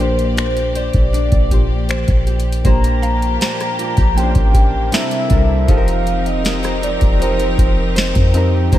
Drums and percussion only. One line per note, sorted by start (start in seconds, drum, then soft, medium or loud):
0.00 closed hi-hat soft
0.19 closed hi-hat soft
0.37 finger snap loud
0.37 closed hi-hat medium
0.57 closed hi-hat soft
0.75 closed hi-hat medium
0.93 kick medium
0.93 closed hi-hat soft
1.14 closed hi-hat medium
1.32 kick loud
1.32 closed hi-hat soft
1.51 kick medium
1.51 closed hi-hat medium
1.89 finger snap loud
1.89 closed hi-hat medium
2.08 kick medium
2.08 closed hi-hat medium
2.27 closed hi-hat soft
2.40 closed hi-hat medium
2.52 closed hi-hat medium
2.65 kick loud
2.65 closed hi-hat medium
2.84 closed hi-hat medium
3.03 closed hi-hat soft
3.22 closed hi-hat soft
3.41 snare loud
3.41 closed hi-hat medium
3.60 cross-stick medium
3.60 closed hi-hat soft
3.79 closed hi-hat medium
3.97 kick medium
3.97 closed hi-hat soft
4.18 closed hi-hat medium
4.35 kick loud
4.35 closed hi-hat soft
4.54 kick loud
4.54 closed hi-hat medium
4.92 snare loud
4.92 closed hi-hat medium
5.11 closed hi-hat medium
5.30 kick medium
5.30 closed hi-hat medium
5.68 kick loud
5.68 closed hi-hat medium
5.88 closed hi-hat medium
6.07 closed hi-hat soft
6.26 closed hi-hat soft
6.45 snare medium
6.45 closed hi-hat medium
6.64 cross-stick medium
6.64 closed hi-hat soft
6.83 closed hi-hat medium
7.01 kick loud
7.01 closed hi-hat soft
7.22 closed hi-hat medium
7.40 closed hi-hat soft
7.58 kick medium
7.58 closed hi-hat medium
7.96 snare loud
7.96 closed hi-hat medium
8.15 kick loud
8.15 closed hi-hat medium
8.34 closed hi-hat medium
8.73 kick loud
8.73 closed hi-hat medium